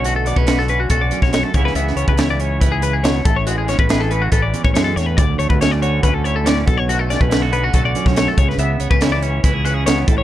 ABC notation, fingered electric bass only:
X:1
M:4/4
L:1/16
Q:1/4=140
K:C#phr
V:1 name="Fingered electric bass" clef=bass
B,,,3 B,,,4- B,,, B,,,2 z B,,,2 z C,,2 | C,,2 C,, C,,4- C,, C,,6 A,,,2- | A,,,3 A,,,4- A,,, A,,,2 z A,,, F,,2 E,,2 | D,,2 D,, D,,4- D,, D,,6 B,,,2- |
B,,,3 B,,,4- B,,, B,,,2 z B,,,2 z C,,2 | C,,2 C,, C,,4- C,, C,,6 A,,,2 |]